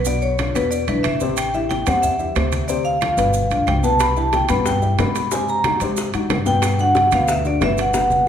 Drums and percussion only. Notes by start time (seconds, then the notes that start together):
0.05 high conga, maracas
0.22 high conga, maracas
0.38 high conga, high timbale, claves, maracas
0.55 high conga, high timbale, maracas
0.72 maracas
0.88 high conga, high timbale, maracas
1.04 high conga, high timbale, claves, maracas
1.20 high conga, maracas
1.37 high conga, high timbale, claves, maracas
1.54 high conga, maracas
1.70 high conga, high timbale, maracas
1.86 high conga, low conga, high timbale, claves, maracas
2.03 high conga, low conga, maracas
2.19 high conga, maracas
2.35 high conga, high timbale, low timbale, claves, maracas
2.52 high conga, high timbale, maracas
2.69 high conga, maracas
2.85 high conga, maracas
3.01 high conga, high timbale, claves, maracas
3.18 high timbale, maracas
3.33 high conga, maracas
3.51 high conga, high timbale, maracas
3.67 high conga, high timbale, low timbale, claves, maracas
3.83 high conga, maracas
4.00 high bongo, high conga, high timbale, claves, maracas
4.16 maracas
4.33 high bongo, high conga, high timbale, maracas
4.49 high bongo, high conga, low conga, high timbale, claves, maracas
4.66 high bongo, high conga, low conga, maracas
4.82 high bongo, high conga, maracas
4.98 high bongo, low bongo, high conga, high timbale, low timbale, claves, maracas
5.15 high bongo, high timbale, maracas
5.31 high bongo, high conga, maracas
5.48 high conga, maracas
5.64 high bongo, high conga, high timbale, claves, maracas
5.80 high bongo, high conga, high timbale, maracas
5.97 high bongo, high conga, maracas
6.14 high bongo, high conga, high timbale, maracas
6.30 high bongo, low bongo, high conga, high timbale, low timbale, claves, maracas
6.46 high bongo, high conga, maracas
6.62 high bongo, high conga, high timbale, claves, maracas
6.79 high conga, maracas
6.95 high bongo, high conga, high timbale, maracas
7.11 high bongo, high conga, low conga, high timbale, claves, maracas
7.28 high bongo, high conga, maracas
7.44 high bongo, high conga, maracas
7.61 high bongo, low bongo, high conga, high timbale, low timbale, claves, maracas
7.78 high bongo, high timbale, maracas
7.94 high bongo, high conga, maracas
8.10 high conga, maracas